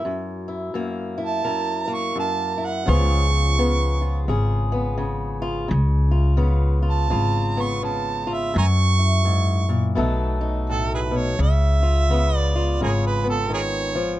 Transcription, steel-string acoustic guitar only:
0, 0, Header, 1, 2, 480
1, 0, Start_track
1, 0, Tempo, 710900
1, 28, Time_signature, 4, 2, 24, 8
1, 9585, End_track
2, 0, Start_track
2, 0, Title_t, "Steel-string acoustic guitar"
2, 0, Program_c, 0, 25
2, 33, Note_on_c, 0, 42, 73
2, 324, Note_on_c, 0, 64, 51
2, 491, Note_off_c, 0, 42, 0
2, 499, Note_on_c, 0, 42, 72
2, 507, Note_on_c, 0, 58, 67
2, 786, Note_off_c, 0, 64, 0
2, 794, Note_on_c, 0, 64, 65
2, 969, Note_off_c, 0, 42, 0
2, 976, Note_on_c, 0, 70, 66
2, 977, Note_on_c, 0, 42, 71
2, 1258, Note_off_c, 0, 58, 0
2, 1266, Note_on_c, 0, 58, 68
2, 1447, Note_off_c, 0, 42, 0
2, 1455, Note_on_c, 0, 42, 75
2, 1730, Note_off_c, 0, 64, 0
2, 1738, Note_on_c, 0, 64, 60
2, 1911, Note_off_c, 0, 64, 0
2, 1914, Note_off_c, 0, 70, 0
2, 1915, Note_off_c, 0, 58, 0
2, 1929, Note_on_c, 0, 49, 78
2, 1936, Note_on_c, 0, 53, 60
2, 1937, Note_off_c, 0, 42, 0
2, 1941, Note_on_c, 0, 59, 60
2, 1947, Note_on_c, 0, 65, 67
2, 1949, Note_on_c, 0, 68, 69
2, 2224, Note_off_c, 0, 65, 0
2, 2227, Note_on_c, 0, 65, 48
2, 2417, Note_off_c, 0, 49, 0
2, 2420, Note_off_c, 0, 59, 0
2, 2420, Note_on_c, 0, 49, 77
2, 2422, Note_on_c, 0, 59, 65
2, 2707, Note_off_c, 0, 65, 0
2, 2710, Note_on_c, 0, 65, 64
2, 2887, Note_off_c, 0, 49, 0
2, 2890, Note_on_c, 0, 49, 76
2, 2895, Note_off_c, 0, 68, 0
2, 2898, Note_on_c, 0, 68, 74
2, 3179, Note_off_c, 0, 59, 0
2, 3187, Note_on_c, 0, 59, 69
2, 3351, Note_off_c, 0, 49, 0
2, 3359, Note_on_c, 0, 49, 77
2, 3650, Note_off_c, 0, 65, 0
2, 3658, Note_on_c, 0, 65, 71
2, 3825, Note_off_c, 0, 49, 0
2, 3829, Note_off_c, 0, 65, 0
2, 3832, Note_off_c, 0, 53, 0
2, 3833, Note_off_c, 0, 59, 0
2, 3834, Note_off_c, 0, 68, 0
2, 3836, Note_on_c, 0, 49, 70
2, 4127, Note_on_c, 0, 65, 55
2, 4293, Note_off_c, 0, 49, 0
2, 4301, Note_on_c, 0, 49, 79
2, 4306, Note_on_c, 0, 59, 64
2, 4599, Note_off_c, 0, 65, 0
2, 4607, Note_on_c, 0, 65, 67
2, 4786, Note_off_c, 0, 49, 0
2, 4793, Note_off_c, 0, 65, 0
2, 4794, Note_on_c, 0, 49, 74
2, 4801, Note_on_c, 0, 65, 64
2, 5092, Note_off_c, 0, 59, 0
2, 5112, Note_on_c, 0, 59, 72
2, 5277, Note_off_c, 0, 49, 0
2, 5285, Note_on_c, 0, 49, 74
2, 5575, Note_off_c, 0, 65, 0
2, 5583, Note_on_c, 0, 65, 72
2, 5748, Note_off_c, 0, 49, 0
2, 5751, Note_off_c, 0, 65, 0
2, 5756, Note_off_c, 0, 59, 0
2, 5765, Note_on_c, 0, 42, 82
2, 6068, Note_on_c, 0, 64, 49
2, 6242, Note_off_c, 0, 42, 0
2, 6245, Note_on_c, 0, 44, 73
2, 6539, Note_off_c, 0, 44, 0
2, 6542, Note_on_c, 0, 46, 67
2, 6715, Note_off_c, 0, 64, 0
2, 6720, Note_on_c, 0, 47, 78
2, 6725, Note_on_c, 0, 54, 65
2, 6729, Note_on_c, 0, 57, 67
2, 6734, Note_off_c, 0, 46, 0
2, 6735, Note_on_c, 0, 63, 63
2, 6737, Note_on_c, 0, 69, 71
2, 7019, Note_off_c, 0, 63, 0
2, 7027, Note_on_c, 0, 63, 65
2, 7221, Note_on_c, 0, 45, 67
2, 7493, Note_off_c, 0, 47, 0
2, 7502, Note_on_c, 0, 47, 70
2, 7511, Note_off_c, 0, 45, 0
2, 7670, Note_off_c, 0, 54, 0
2, 7675, Note_off_c, 0, 63, 0
2, 7675, Note_off_c, 0, 69, 0
2, 7687, Note_off_c, 0, 47, 0
2, 7689, Note_on_c, 0, 49, 80
2, 7695, Note_off_c, 0, 57, 0
2, 7984, Note_on_c, 0, 65, 59
2, 8162, Note_off_c, 0, 49, 0
2, 8170, Note_on_c, 0, 49, 84
2, 8179, Note_on_c, 0, 59, 72
2, 8468, Note_off_c, 0, 65, 0
2, 8477, Note_on_c, 0, 65, 71
2, 8640, Note_off_c, 0, 49, 0
2, 8648, Note_on_c, 0, 49, 76
2, 8656, Note_on_c, 0, 68, 72
2, 8932, Note_off_c, 0, 59, 0
2, 8940, Note_on_c, 0, 59, 68
2, 9110, Note_off_c, 0, 49, 0
2, 9112, Note_on_c, 0, 51, 67
2, 9419, Note_off_c, 0, 51, 0
2, 9421, Note_on_c, 0, 53, 71
2, 9585, Note_off_c, 0, 53, 0
2, 9585, Note_off_c, 0, 59, 0
2, 9585, Note_off_c, 0, 65, 0
2, 9585, Note_off_c, 0, 68, 0
2, 9585, End_track
0, 0, End_of_file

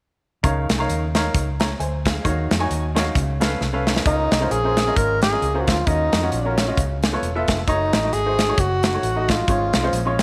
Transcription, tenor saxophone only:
0, 0, Header, 1, 2, 480
1, 0, Start_track
1, 0, Key_signature, -5, "major"
1, 0, Tempo, 452148
1, 465, Time_signature, 4, 2, 24, 8
1, 10856, End_track
2, 0, Start_track
2, 0, Title_t, "Tenor saxophone"
2, 0, Program_c, 0, 66
2, 4314, Note_on_c, 0, 63, 93
2, 4793, Note_on_c, 0, 68, 98
2, 4809, Note_off_c, 0, 63, 0
2, 5272, Note_on_c, 0, 70, 101
2, 5288, Note_off_c, 0, 68, 0
2, 5539, Note_off_c, 0, 70, 0
2, 5545, Note_on_c, 0, 68, 101
2, 5956, Note_on_c, 0, 66, 64
2, 5972, Note_off_c, 0, 68, 0
2, 6020, Note_on_c, 0, 65, 85
2, 6036, Note_off_c, 0, 66, 0
2, 6231, Note_on_c, 0, 63, 93
2, 6247, Note_off_c, 0, 65, 0
2, 6706, Note_on_c, 0, 61, 78
2, 6722, Note_off_c, 0, 63, 0
2, 7462, Note_off_c, 0, 61, 0
2, 8158, Note_on_c, 0, 63, 93
2, 8634, Note_on_c, 0, 68, 99
2, 8649, Note_off_c, 0, 63, 0
2, 9132, Note_on_c, 0, 66, 95
2, 9148, Note_off_c, 0, 68, 0
2, 9878, Note_on_c, 0, 65, 85
2, 9894, Note_off_c, 0, 66, 0
2, 10828, Note_off_c, 0, 65, 0
2, 10856, End_track
0, 0, End_of_file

